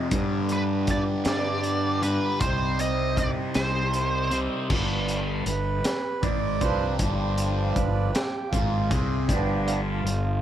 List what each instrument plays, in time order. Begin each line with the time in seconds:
Already playing: distorted electric guitar F2
0.11 distorted electric guitar G2 D3 G3, fingered electric bass G2, harmonium B3 D4 G4, kick, closed hi-hat
0.49 lead electric guitar B4, closed hi-hat
0.87 lead electric guitar D5, kick, closed hi-hat
1.25 fingered electric bass G2, lead electric guitar D5, snare, closed hi-hat
1.63 closed hi-hat
2.02 distorted electric guitar G2 D3 G3, lead electric guitar B4, closed hi-hat
2.40 fingered electric bass C2, distorted electric guitar C3 G3 C4, harmonium C4 D#4, lead electric guitar C5, kick, closed hi-hat
2.79 lead electric guitar D#5, closed hi-hat
3.17 lead electric guitar D5, kick, closed hi-hat
3.54 fingered electric bass C2, lead electric guitar C5, snare, closed hi-hat
3.94 closed hi-hat
4.31 distorted electric guitar C3 G3 C4, closed hi-hat
4.69 fingered electric bass G1, distorted electric guitar G2, harmonium F3 B3 D4, kick, crash
5.08 closed hi-hat
5.46 fingered electric bass G1, distorted electric guitar G2, harmonium B4, closed hi-hat
5.84 snare, closed hi-hat
6.23 fingered electric bass G#1, distorted electric guitar G#2, harmonium D5, kick, closed hi-hat
6.61 fingered electric bass C2, distorted electric guitar C3, harmonium F3 D4 B4 C5, kick, closed hi-hat
6.99 fingered electric bass G1, distorted electric guitar G2, harmonium F3 G3 D4, kick, closed hi-hat
7.38 closed hi-hat
7.75 fingered electric bass G1, distorted electric guitar G2, harmonium B4, kick, closed hi-hat
8.13 harmonium G4, snare, closed hi-hat
8.49 fingered electric bass G#1, distorted electric guitar G#2, harmonium F4, kick
8.54 closed hi-hat
8.88 fingered electric bass C2, distorted electric guitar C3, harmonium G#4, kick, closed hi-hat
9.28 fingered electric bass G1, distorted electric guitar G2, harmonium F3 B3 D4 G4, kick, closed hi-hat
9.66 harmonium F4, closed hi-hat
10.04 fingered electric bass G1, distorted electric guitar G2, closed hi-hat